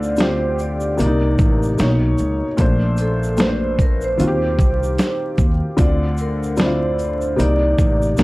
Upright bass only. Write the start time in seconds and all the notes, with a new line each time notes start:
Already playing: D2
0.99 C2
1.39 A1
1.80 B1
2.20 C#2
2.59 A#1
4.20 D#2
4.59 C2
5.38 D#2
5.79 D2
7.39 C2
7.79 A1
8.19 B1